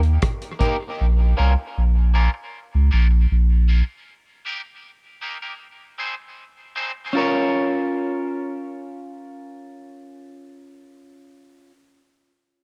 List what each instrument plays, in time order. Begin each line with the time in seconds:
Already playing: sub bass D#2
0.03 closed hi-hat
0.22 kick, cross-stick, closed hi-hat
0.42 closed hi-hat
0.59 clean electric guitar A#3 D#4 G4 A#4, kick, closed hi-hat
1.01 sub bass A#1
1.37 sub bass C2, clean electric guitar A#3 C#4 F4 A#4
1.78 sub bass A#1
2.14 clean electric guitar A#3 C#4 F4 A#4
2.35 muted clean electric guitar stroke
2.75 sub bass C#2
2.91 sub bass A#1, clean electric guitar A#3 C#4 F4 A#4
3.12 muted clean electric guitar stroke
3.32 sub bass A#1
3.68 clean electric guitar A#3 C#4 F4 A#4
4.45 clean electric guitar A#3 D#4 G4 A#4
5.21 clean electric guitar A#3 D#4 G4 A#4
5.42 clean electric guitar A#3 D#4 G4 A#4
5.98 clean electric guitar C4 D#4 G#4 C5
6.76 clean electric guitar C4 D#4 G#4 C5
7.13 clean electric guitar C#4 F4 A#4
7.18 clean electric guitar C#5